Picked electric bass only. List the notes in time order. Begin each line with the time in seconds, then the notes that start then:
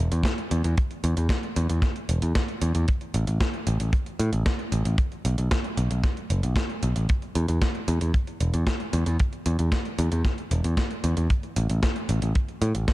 0.12 E2
0.51 E2
0.64 E2
1.04 E2
1.17 E2
1.56 E2
1.70 E2
2.09 E1
2.22 E2
2.62 E2
2.75 E2
3.14 A1
3.28 A1
3.67 A1
3.80 A1
4.19 A2
4.33 A1
4.72 A1
4.85 A1
5.25 B1
5.38 B1
5.78 B1
5.91 B1
6.30 F#1
6.43 B1
6.83 B1
6.96 A1
7.35 E2
7.49 E2
7.88 E2
8.01 E2
8.41 E1
8.54 E2
8.93 E2
9.06 E2
9.46 E2
9.59 E2
9.99 E2
10.12 E2
10.51 E1
10.64 E2
11.04 E2
11.17 E2
11.56 A1
11.70 A1
12.09 A1
12.22 A1
12.62 A2
12.75 A1